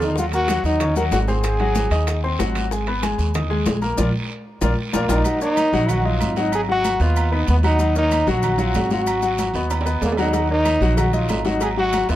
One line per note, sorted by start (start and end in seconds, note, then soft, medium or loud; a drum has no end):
0.00 0.59 D#2 medium
0.00 0.11 F3 medium
0.00 0.17 D#4 medium
0.00 0.12 F4 medium
0.00 0.12 F5 medium
0.00 high bongo soft
0.00 low conga medium
0.00 low timbale medium
0.00 short guiro medium
0.00 maracas soft
0.16 0.31 F#3 medium
0.16 0.26 F4 loud
0.16 0.31 F#4 medium
0.16 0.31 F#5 medium
0.16 high bongo medium
0.16 high conga soft
0.16 long guiro medium
0.16 maracas medium
0.32 0.46 A#3 medium
0.32 0.63 F#4 loud
0.32 0.46 A#4 medium
0.32 0.46 A#5 medium
0.32 high conga soft
0.32 high timbale medium
0.32 maracas medium
0.48 0.75 F#3 medium
0.48 0.76 F#4 medium
0.48 0.76 F#5 medium
0.48 high bongo medium
0.48 high conga medium
0.48 high timbale loud
0.48 short guiro medium
0.48 maracas medium
0.64 1.08 D#2 loud
0.64 0.95 D#4 loud
0.64 high bongo soft
0.64 short guiro medium
0.64 maracas soft
0.80 0.94 C#4 medium
0.80 0.94 C#5 medium
0.80 0.94 C#6 medium
0.80 high bongo medium
0.80 high conga soft
0.80 low conga medium
0.80 high timbale loud
0.80 long guiro medium
0.80 maracas medium
0.96 1.22 F#3 medium
0.96 1.23 F#4 loud
0.96 1.04 A#4 medium
0.96 1.23 F#5 loud
0.96 high bongo soft
0.96 maracas medium
1.11 1.86 G#1 medium
1.11 1.19 F#4 loud
1.11 high bongo medium
1.11 low bongo medium
1.11 high conga medium
1.11 high timbale medium
1.11 low timbale medium
1.11 short guiro medium
1.11 maracas medium
1.28 1.54 C4 medium
1.28 2.20 G#4 loud
1.28 1.54 C5 medium
1.28 1.54 C6 medium
1.28 high bongo soft
1.28 high conga medium
1.28 short guiro medium
1.28 maracas soft
1.43 high bongo medium
1.43 high conga soft
1.43 high timbale medium
1.43 long guiro medium
1.43 maracas medium
1.60 1.86 F#3 medium
1.60 1.86 F#4 medium
1.60 1.86 F#5 medium
1.60 high bongo soft
1.60 high conga soft
1.60 high timbale medium
1.75 high bongo medium
1.75 high conga loud
1.75 short guiro medium
1.75 maracas medium
1.90 2.35 D#2 medium
1.90 2.18 D#4 medium
1.90 2.18 D#5 loud
1.90 2.18 D#6 medium
1.90 high conga soft
1.90 high timbale medium
1.90 short guiro medium
1.90 maracas soft
2.07 high bongo medium
2.07 high conga soft
2.07 high timbale medium
2.07 long guiro medium
2.07 maracas medium
2.24 2.37 C4 medium
2.24 2.37 C5 medium
2.24 2.37 C6 medium
2.24 high bongo soft
2.24 high conga soft
2.39 3.13 G#1 medium
2.39 2.65 F#3 medium
2.39 2.65 F#4 loud
2.39 2.66 F#5 medium
2.39 high bongo medium
2.39 low bongo medium
2.39 high conga medium
2.39 high timbale medium
2.39 short guiro medium
2.39 maracas medium
2.55 high bongo soft
2.55 high conga medium
2.55 high timbale loud
2.55 short guiro medium
2.55 maracas soft
2.71 2.84 G#3 medium
2.71 2.85 G#4 medium
2.71 2.85 G#5 medium
2.71 high bongo medium
2.71 high conga soft
2.71 long guiro medium
2.71 maracas medium
2.87 3.00 B3 medium
2.87 3.01 B4 medium
2.87 3.01 B5 medium
2.87 high conga soft
2.87 high timbale medium
3.02 3.28 G#3 medium
3.02 3.29 G#4 medium
3.02 3.29 G#5 medium
3.02 high bongo medium
3.02 high conga medium
3.02 high timbale medium
3.02 short guiro medium
3.02 maracas medium
3.18 3.63 D#2 medium
3.18 high bongo soft
3.18 short guiro medium
3.18 maracas soft
3.34 3.48 D#4 medium
3.34 3.48 D#5 medium
3.34 3.48 D#6 medium
3.34 high bongo medium
3.34 high conga soft
3.34 low conga medium
3.34 high timbale medium
3.34 long guiro medium
3.34 maracas medium
3.50 3.76 G#3 loud
3.50 3.77 G#4 loud
3.50 3.77 G#5 medium
3.50 high bongo soft
3.50 high conga soft
3.66 3.96 A#1 medium
3.66 high bongo medium
3.66 low bongo loud
3.66 high conga medium
3.66 high timbale medium
3.66 low timbale medium
3.66 short guiro medium
3.66 maracas medium
3.82 3.95 A#3 medium
3.82 3.95 A#4 medium
3.82 3.95 A#5 medium
3.82 high bongo soft
3.82 high conga medium
3.82 short guiro medium
3.82 maracas soft
3.97 4.10 A#1 loud
3.97 4.08 D4 medium
3.97 4.08 F4 medium
3.97 4.08 A#4 medium
3.97 low bongo medium
3.97 high conga loud
3.97 high timbale medium
3.97 long guiro loud
3.97 maracas loud
4.61 4.73 A#1 loud
4.61 4.72 D4 medium
4.61 4.72 F4 loud
4.61 4.72 A#4 medium
4.61 low bongo loud
4.61 high conga loud
4.61 high timbale medium
4.61 long guiro medium
4.61 maracas loud
4.93 5.05 A#1 medium
4.93 5.12 A#3 loud
4.93 5.04 D4 medium
4.93 5.03 F4 loud
4.93 5.04 A#4 loud
4.93 low bongo loud
4.93 high conga medium
4.93 high timbale loud
4.93 long guiro loud
4.93 maracas loud
5.09 5.21 A#1 loud
5.09 5.19 D4 loud
5.09 5.42 D#4 loud
5.09 5.19 F4 loud
5.09 5.19 A#4 loud
5.09 low bongo loud
5.09 high conga medium
5.09 high timbale loud
5.09 long guiro medium
5.09 maracas loud
5.25 5.38 F#3 medium
5.25 5.39 F#4 medium
5.25 5.39 F#5 medium
5.25 high conga soft
5.25 low agogo medium
5.25 long guiro medium
5.25 maracas medium
5.41 5.67 A#3 medium
5.41 5.92 D#4 loud
5.41 5.68 A#4 medium
5.41 5.68 C#5 medium
5.41 high conga soft
5.41 maracas medium
5.57 high conga medium
5.57 low agogo loud
5.57 short guiro medium
5.57 maracas medium
5.73 6.17 A#1 loud
5.73 5.99 F#3 loud
5.73 5.99 F#4 loud
5.73 6.00 F#5 loud
5.73 short guiro medium
5.73 maracas soft
5.89 6.07 F#4 loud
5.89 high conga soft
5.89 low conga medium
5.89 low agogo medium
5.89 long guiro medium
5.89 maracas medium
6.05 6.31 F#3 medium
6.05 6.31 D#4 medium
6.05 6.37 F4 medium
6.05 6.32 D#5 medium
6.05 high conga soft
6.20 6.95 G#1 medium
6.20 high conga medium
6.20 low agogo medium
6.20 short guiro medium
6.20 maracas medium
6.36 6.63 F#3 medium
6.36 6.53 D#4 medium
6.36 6.63 F#4 medium
6.36 6.63 F#5 medium
6.36 high conga medium
6.36 short guiro medium
6.36 maracas soft
6.52 6.61 G#4 loud
6.52 high conga soft
6.52 low agogo medium
6.52 long guiro medium
6.52 maracas medium
6.68 6.95 F#3 medium
6.68 6.95 F#4 medium
6.68 7.04 F#4 loud
6.68 6.95 F#5 medium
6.68 high conga soft
6.84 high conga loud
6.84 low agogo loud
6.84 short guiro medium
6.84 maracas medium
7.00 7.44 D#2 loud
7.00 7.27 B3 medium
7.00 7.36 F4 loud
7.00 7.27 B4 medium
7.00 7.27 D#5 medium
7.00 high conga soft
7.00 short guiro medium
7.00 maracas soft
7.16 high conga soft
7.16 low agogo loud
7.16 long guiro medium
7.16 maracas medium
7.32 7.58 B3 medium
7.32 7.49 D#4 medium
7.32 7.58 B4 medium
7.32 7.58 D#5 medium
7.32 high conga soft
7.32 low agogo medium
7.48 8.22 D#2 loud
7.48 7.57 B3 loud
7.48 high conga medium
7.48 short guiro medium
7.48 maracas medium
7.63 7.77 F#3 medium
7.63 7.94 D#4 loud
7.63 7.77 F#4 medium
7.63 7.77 F#5 medium
7.63 low agogo loud
7.63 short guiro medium
7.63 maracas soft
7.79 7.92 F#3 medium
7.79 7.93 F#4 medium
7.79 7.93 F#5 medium
7.79 high conga soft
7.79 low agogo medium
7.79 long guiro medium
7.79 maracas medium
7.95 8.22 A#3 medium
7.95 8.27 D#4 loud
7.95 8.22 A#4 medium
7.95 8.22 C#5 medium
7.95 high conga soft
7.95 maracas medium
8.11 high conga medium
8.11 low agogo loud
8.11 short guiro medium
8.11 maracas medium
8.27 8.71 A#1 loud
8.27 8.54 F#3 loud
8.27 8.54 F#4 loud
8.27 8.63 F#4 loud
8.27 8.54 F#5 loud
8.27 short guiro medium
8.27 maracas soft
8.43 high conga soft
8.43 low conga medium
8.43 low agogo loud
8.43 long guiro medium
8.43 maracas medium
8.58 8.85 F#3 loud
8.58 8.79 F4 medium
8.58 8.85 F#4 loud
8.58 8.85 F#5 medium
8.58 high conga soft
8.58 maracas medium
8.74 9.49 G#1 medium
8.74 8.92 F#4 loud
8.74 high conga medium
8.74 low timbale medium
8.74 low agogo medium
8.74 short guiro medium
8.74 maracas medium
8.90 9.17 F#3 medium
8.90 9.17 F#4 medium
8.90 9.72 F#4 loud
8.90 9.18 F#5 medium
8.90 high conga medium
8.90 short guiro medium
8.90 maracas soft
9.07 high conga soft
9.07 low agogo loud
9.07 long guiro medium
9.07 maracas medium
9.22 9.49 F#3 medium
9.22 9.49 F#4 medium
9.22 9.49 F#5 medium
9.22 high conga soft
9.22 maracas medium
9.38 high conga loud
9.38 low agogo medium
9.38 short guiro medium
9.38 maracas medium
9.54 9.98 D#2 loud
9.54 9.81 B3 medium
9.54 9.81 B4 medium
9.54 9.81 D#5 medium
9.54 high conga soft
9.54 short guiro medium
9.54 maracas soft
9.70 high conga soft
9.70 high timbale medium
9.70 low agogo loud
9.70 long guiro medium
9.70 maracas medium
9.81 high timbale loud
9.86 10.12 B3 medium
9.86 10.12 B4 medium
9.86 10.12 D#5 medium
9.86 high conga soft
9.86 low agogo medium
9.86 maracas medium
10.01 10.76 D#2 loud
10.01 10.11 A#3 loud
10.01 high conga medium
10.01 low timbale medium
10.01 short guiro medium
10.01 maracas medium
10.12 low timbale loud
10.17 10.31 F#3 loud
10.17 10.49 D#4 loud
10.17 10.32 F#4 medium
10.17 10.32 F#5 medium
10.17 low agogo loud
10.17 short guiro medium
10.17 maracas soft
10.23 low timbale medium
10.33 10.47 F#3 medium
10.33 10.47 F#4 medium
10.33 10.47 F#5 medium
10.33 cowbell loud
10.33 high conga soft
10.33 low agogo medium
10.33 long guiro medium
10.33 maracas medium
10.50 10.76 A#3 medium
10.50 11.01 D#4 loud
10.50 10.76 A#4 medium
10.50 10.77 C#5 medium
10.50 high conga soft
10.65 cowbell medium
10.65 high conga medium
10.65 low agogo loud
10.65 short guiro medium
10.65 maracas medium
10.81 11.25 A#1 loud
10.81 11.08 F#3 loud
10.81 11.08 F#4 loud
10.81 11.08 F#5 medium
10.81 short guiro medium
10.81 maracas soft
10.97 11.14 F#4 loud
10.97 cowbell loud
10.97 high conga soft
10.97 low conga medium
10.97 low agogo loud
10.97 long guiro medium
10.97 maracas medium
11.13 11.39 F#3 medium
11.13 11.40 D#4 loud
11.13 11.48 F4 medium
11.13 11.40 D#5 loud
11.13 cowbell medium
11.13 high conga soft
11.13 maracas medium
11.29 12.03 G#1 medium
11.29 cowbell medium
11.29 high conga medium
11.29 low timbale medium
11.29 low agogo medium
11.29 short guiro medium
11.29 maracas medium
11.45 11.71 F#3 loud
11.45 11.62 D#4 medium
11.45 11.72 F#4 medium
11.45 11.72 F#5 medium
11.45 cowbell medium
11.45 high conga medium
11.45 short guiro medium
11.45 maracas soft
11.61 11.70 G#4 loud
11.61 cowbell loud
11.61 high conga soft
11.61 low agogo loud
11.61 long guiro medium
11.61 maracas medium
11.77 12.03 F#3 medium
11.77 12.03 F#4 medium
11.77 12.08 F#4 loud
11.77 12.04 F#5 medium
11.77 high conga soft
11.93 cowbell medium
11.93 high conga loud
11.93 low agogo loud
11.93 short guiro medium
11.93 maracas medium
12.09 12.16 D#2 loud
12.09 12.16 B3 medium
12.09 12.16 F4 medium
12.09 12.16 B4 medium
12.09 12.16 D#5 medium
12.09 cowbell medium
12.09 high conga soft
12.09 short guiro medium
12.09 maracas soft